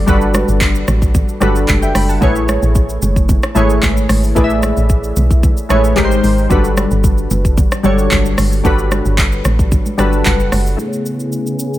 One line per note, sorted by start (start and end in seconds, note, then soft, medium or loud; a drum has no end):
0.00 0.07 G3 medium
0.00 0.07 D4 medium
0.00 0.08 F#4 medium
0.00 0.08 A4 medium
0.00 2.24 D5 loud
0.07 0.44 G1 loud
0.07 0.93 G3 medium
0.07 0.93 D4 medium
0.07 0.94 F#4 medium
0.07 0.94 A4 medium
0.07 0.94 B4 loud
0.07 kick loud
0.07 low conga medium
0.07 shaker medium
0.21 shaker medium
0.34 cross-stick loud
0.34 high conga medium
0.34 shaker medium
0.48 0.83 G1 loud
0.48 shaker medium
0.61 kick loud
0.61 clap loud
0.61 shaker medium
0.75 shaker medium
0.88 1.24 A1 loud
0.88 cross-stick medium
0.88 high conga medium
0.88 low conga medium
0.88 shaker loud
1.02 kick loud
1.02 shaker medium
1.15 kick loud
1.15 low conga medium
1.15 shaker medium
1.29 shaker medium
1.40 1.65 G1 loud
1.40 2.06 G3 medium
1.40 2.06 D4 medium
1.40 2.06 F#4 medium
1.40 2.07 A4 medium
1.40 2.07 B4 loud
1.40 cross-stick loud
1.40 high conga medium
1.40 shaker medium
1.55 shaker medium
1.68 1.92 F#1 loud
1.68 kick medium
1.68 clap medium
1.68 high conga medium
1.68 shaker medium
1.82 1.95 E5 medium
1.82 1.95 G5 medium
1.82 shaker medium
1.95 2.19 F#1 medium
1.95 2.09 G5 medium
1.95 2.08 B5 medium
1.95 cross-stick loud
1.95 open hi-hat medium
1.95 high conga medium
1.95 shaker medium
2.09 2.35 F#5 medium
2.09 2.35 A5 medium
2.09 shaker medium
2.21 2.58 A1 loud
2.21 3.07 A3 medium
2.21 3.08 E4 medium
2.21 3.08 G#4 medium
2.21 3.08 B4 medium
2.21 3.09 C#5 loud
2.21 kick loud
2.21 low conga medium
2.21 shaker medium
2.36 shaker medium
2.48 cross-stick loud
2.48 high conga medium
2.48 shaker medium
2.62 2.98 A1 loud
2.62 shaker medium
2.75 kick loud
2.75 shaker medium
2.89 shaker medium
3.02 3.38 F#1 loud
3.02 high conga medium
3.02 low conga medium
3.02 shaker loud
3.16 kick loud
3.16 shaker medium
3.29 kick loud
3.29 low conga medium
3.29 shaker medium
3.43 cross-stick loud
3.43 shaker medium
3.55 3.80 G#1 loud
3.55 4.20 A3 medium
3.55 4.20 E4 medium
3.55 4.21 G#4 medium
3.55 4.21 B4 medium
3.55 4.21 C#5 medium
3.55 high conga medium
3.55 shaker medium
3.70 shaker medium
3.83 4.07 G#1 medium
3.83 kick medium
3.83 clap medium
3.83 high conga medium
3.83 shaker medium
3.97 shaker medium
4.09 4.33 G#1 medium
4.09 cross-stick loud
4.09 open hi-hat medium
4.09 high conga medium
4.09 shaker medium
4.24 shaker medium
4.35 4.72 A1 loud
4.35 5.22 A3 medium
4.35 5.22 E4 medium
4.35 5.22 G#4 medium
4.35 5.23 B4 medium
4.35 4.44 D5 medium
4.35 kick loud
4.35 low conga medium
4.35 shaker medium
4.44 5.26 E5 loud
4.50 shaker medium
4.63 cross-stick loud
4.63 high conga medium
4.63 shaker medium
4.77 5.12 A1 loud
4.77 shaker medium
4.89 kick loud
4.89 shaker medium
5.04 shaker medium
5.16 5.53 B1 medium
5.16 high conga medium
5.16 low conga medium
5.16 shaker loud
5.31 kick loud
5.31 shaker medium
5.43 kick loud
5.43 low conga medium
5.43 shaker medium
5.57 shaker medium
5.69 5.94 A1 medium
5.69 5.96 A3 medium
5.69 5.97 E4 medium
5.69 5.97 G#4 medium
5.69 5.97 B4 medium
5.69 5.98 C#5 loud
5.69 cross-stick loud
5.69 high conga medium
5.69 shaker medium
5.84 shaker medium
5.96 6.21 G#1 loud
5.96 6.40 G#3 loud
5.96 6.40 D#4 medium
5.96 6.40 G4 medium
5.96 6.41 A#4 medium
5.96 6.04 B4 medium
5.96 kick medium
5.96 clap medium
5.96 high conga medium
5.96 shaker medium
6.05 6.44 C5 loud
6.11 shaker medium
6.24 6.47 G#1 loud
6.24 open hi-hat medium
6.24 high conga medium
6.24 shaker medium
6.38 shaker medium
6.49 6.87 G1 loud
6.49 7.36 G3 medium
6.49 7.36 D4 medium
6.49 7.37 F#4 medium
6.49 7.37 A4 medium
6.49 7.37 B4 loud
6.49 kick loud
6.49 low conga medium
6.49 shaker medium
6.64 shaker medium
6.77 cross-stick loud
6.77 high conga medium
6.77 shaker medium
6.91 7.26 G1 loud
6.91 shaker medium
7.04 kick loud
7.04 shaker medium
7.18 shaker medium
7.31 7.67 F#1 medium
7.31 high conga medium
7.31 low conga medium
7.31 shaker loud
7.45 kick loud
7.45 shaker medium
7.57 kick loud
7.57 low conga medium
7.57 shaker medium
7.71 cross-stick loud
7.71 shaker medium
7.83 8.08 G1 loud
7.83 8.49 G3 medium
7.83 8.49 D4 medium
7.83 8.49 F#4 medium
7.83 8.50 A4 medium
7.83 8.50 C#5 loud
7.83 high conga medium
7.83 shaker medium
7.98 shaker medium
8.11 8.35 G1 medium
8.11 kick medium
8.11 clap medium
8.11 high conga medium
8.11 shaker medium
8.25 shaker medium
8.38 8.62 G1 loud
8.38 cross-stick loud
8.38 open hi-hat medium
8.38 high conga medium
8.38 shaker medium
8.52 shaker medium
8.64 9.01 G1 loud
8.64 9.50 G3 medium
8.64 9.50 D4 medium
8.64 9.51 F#4 medium
8.64 9.51 A4 medium
8.64 9.51 B4 loud
8.64 kick loud
8.64 low conga medium
8.64 shaker medium
8.79 shaker medium
8.91 cross-stick loud
8.91 high conga medium
8.91 shaker medium
9.05 9.41 G1 loud
9.05 shaker medium
9.18 kick loud
9.18 clap loud
9.18 shaker medium
9.32 shaker medium
9.45 9.81 A1 loud
9.45 cross-stick loud
9.45 high conga medium
9.45 low conga medium
9.45 shaker loud
9.59 kick loud
9.59 shaker medium
9.72 kick loud
9.72 low conga medium
9.72 shaker medium
9.86 high conga medium
9.86 shaker medium
9.98 10.22 G1 loud
9.98 10.63 G3 medium
9.98 10.63 D4 medium
9.98 10.63 F#4 medium
9.98 10.64 A4 medium
9.98 10.64 B4 loud
9.98 10.24 A5 medium
9.98 cross-stick loud
9.98 high conga medium
9.98 shaker medium
10.13 shaker medium
10.25 10.49 F#1 loud
10.25 10.75 F#5 medium
10.25 kick medium
10.25 clap medium
10.25 high conga medium
10.25 shaker medium
10.40 shaker medium
10.52 10.76 F#1 loud
10.52 cross-stick medium
10.52 open hi-hat medium
10.52 high conga medium
10.52 shaker medium
10.67 shaker medium
10.77 11.79 C#3 medium
10.77 11.79 A3 medium
10.77 11.79 B3 medium
10.77 11.79 E4 medium
10.77 11.79 G#4 medium
10.77 shaker medium
10.88 11.79 C#5 medium
10.93 shaker soft
11.06 shaker medium
11.20 shaker soft
11.32 shaker medium
11.47 shaker medium
11.59 shaker medium
11.74 shaker medium